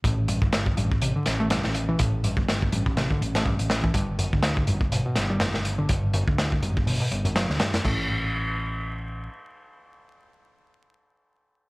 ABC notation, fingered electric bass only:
X:1
M:4/4
L:1/16
Q:"Swing 16ths" 1/4=123
K:Ador
V:1 name="Fingered electric bass" clef=bass
A,,,3 G,,,3 A,,,3 z A,,,3 A,,,3 | A,,,3 G,,,3 A,,,3 z A,,,3 A,,,3 | G,,,3 D,,3 G,,,3 z G,,,3 G,,,3 | G,,,3 D,,3 G,,,3 z G,,,3 D,, z2 |
A,,,12 z4 | z16 |]